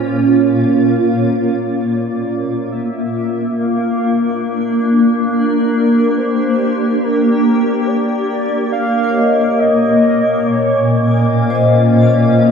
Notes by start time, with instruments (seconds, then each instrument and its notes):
Already playing: ambient pad A#2 A#3 C#4 F4, soft synth lead C5
0.18 soft synth lead C#5
1.90 soft synth lead D5
2.72 soft synth lead E5
2.81 ambient pad D4
3.58 soft synth lead F5
4.98 ambient pad G4
5.32 soft synth lead A#4
6.17 soft synth lead C5
7.03 soft synth lead A#4
7.87 soft synth lead D5
8.72 ambient pad A#2, soft synth lead F5
9.04 vibraphone A#4
9.09 vibraphone C#5
9.15 vibraphone D#5
9.59 soft synth lead D#5
9.82 ambient pad F5
9.95 ambient pad F4
10.18 ambient pad C#4
10.46 soft synth lead C#5
11.50 vibraphone C5
11.55 vibraphone D#5